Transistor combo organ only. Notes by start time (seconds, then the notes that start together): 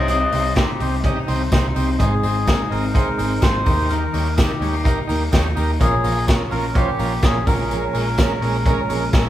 Already playing: D#4 G4 C5
0.32 D#4 G4 C5
0.56 D#4 G4 C5
0.80 D#4 G4 C5
1.04 D#4 G4 D#5
1.27 D#4 G4 C5
1.52 D#4 G4 C5
1.75 D#4 G4 C5
1.99 D#4 G#4 C5
2.23 D#4 G#4 C5
2.46 D#4 G#4 A#4
2.69 D#4 G#4 D#5
2.93 D#4 G#4 C5
3.17 D#4 G#4 C5
3.41 D#4 G#4 C5
3.64 D#4 G4 A#4
4.13 D#4 G4 C#5
4.36 D#4 G4 A#4
4.60 D#4 G4 C#5
4.84 D#4 G4 A#4
5.07 D#4 G4 A#4
5.32 D#4 G4 C#5
5.55 D#4 G4 A#4
5.80 C#4 F4 A#4
6.03 C#4 F4 A#4
6.27 C#4 F4 A#4
6.50 C#4 F4 A#4
6.74 C#4 F4 C5
6.98 C#4 F4 A#4
7.22 C#4 F4 A#4
7.46 C#4 G#4 A#4
7.93 C#4 G#4 A#4
8.18 C#4 G#4 A#4
8.41 C#4 G#4 A#4
8.66 C#4 G#4 A#4
8.89 C#4 G#4 A#4
9.13 C#4 G#4 A#4